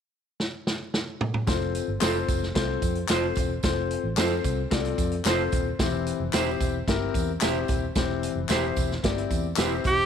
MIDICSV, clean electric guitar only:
0, 0, Header, 1, 2, 480
1, 0, Start_track
1, 0, Key_signature, -1, "major"
1, 0, Tempo, 540541
1, 1308, Time_signature, 4, 2, 24, 8
1, 8931, End_track
2, 0, Start_track
2, 0, Title_t, "Clean electric guitar"
2, 0, Program_c, 0, 27
2, 1786, Note_on_c, 0, 65, 69
2, 1796, Note_on_c, 0, 69, 88
2, 1802, Note_on_c, 0, 72, 76
2, 1915, Note_off_c, 0, 65, 0
2, 1920, Note_off_c, 0, 69, 0
2, 1923, Note_off_c, 0, 72, 0
2, 2750, Note_on_c, 0, 65, 78
2, 2758, Note_on_c, 0, 69, 86
2, 2766, Note_on_c, 0, 72, 86
2, 2878, Note_off_c, 0, 65, 0
2, 2882, Note_off_c, 0, 69, 0
2, 2886, Note_off_c, 0, 72, 0
2, 3708, Note_on_c, 0, 65, 78
2, 3714, Note_on_c, 0, 69, 83
2, 3720, Note_on_c, 0, 72, 89
2, 3837, Note_off_c, 0, 65, 0
2, 3840, Note_off_c, 0, 69, 0
2, 3843, Note_off_c, 0, 72, 0
2, 4665, Note_on_c, 0, 65, 85
2, 4672, Note_on_c, 0, 69, 94
2, 4683, Note_on_c, 0, 72, 97
2, 4796, Note_off_c, 0, 65, 0
2, 4799, Note_off_c, 0, 69, 0
2, 4805, Note_off_c, 0, 72, 0
2, 5620, Note_on_c, 0, 64, 76
2, 5629, Note_on_c, 0, 67, 86
2, 5635, Note_on_c, 0, 72, 92
2, 5753, Note_off_c, 0, 64, 0
2, 5758, Note_off_c, 0, 67, 0
2, 5761, Note_off_c, 0, 72, 0
2, 6582, Note_on_c, 0, 64, 80
2, 6591, Note_on_c, 0, 67, 96
2, 6597, Note_on_c, 0, 72, 94
2, 6714, Note_off_c, 0, 64, 0
2, 6718, Note_off_c, 0, 67, 0
2, 6721, Note_off_c, 0, 72, 0
2, 7548, Note_on_c, 0, 64, 82
2, 7556, Note_on_c, 0, 67, 84
2, 7560, Note_on_c, 0, 72, 89
2, 7676, Note_off_c, 0, 64, 0
2, 7680, Note_off_c, 0, 67, 0
2, 7682, Note_off_c, 0, 72, 0
2, 8503, Note_on_c, 0, 64, 79
2, 8511, Note_on_c, 0, 67, 79
2, 8519, Note_on_c, 0, 72, 86
2, 8632, Note_off_c, 0, 64, 0
2, 8636, Note_off_c, 0, 67, 0
2, 8640, Note_off_c, 0, 72, 0
2, 8931, End_track
0, 0, End_of_file